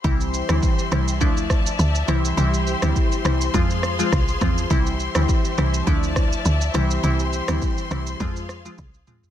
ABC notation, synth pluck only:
X:1
M:4/4
L:1/16
Q:"Swing 16ths" 1/4=103
K:C
V:1 name="Synth pluck"
[E,G,CE]3 [E,G,CE]3 [E,G,CE]2 [F,A,DE]6 [E,G,CE]2 | [E,G,CE]3 [E,G,CE]3 [E,G,CE]2 [F,_A,CF]3 [F,A,CF] z2 [F,A,CF] z | [E,G,CE]3 [E,G,CE]3 [E,G,CE]2 [F,A,DE]6 [E,G,CE]2 | [E,G,CE]3 [E,G,CE]3 [E,G,CE]2 [F,_A,CF]3 [F,A,CF] z2 [F,A,CF] z |]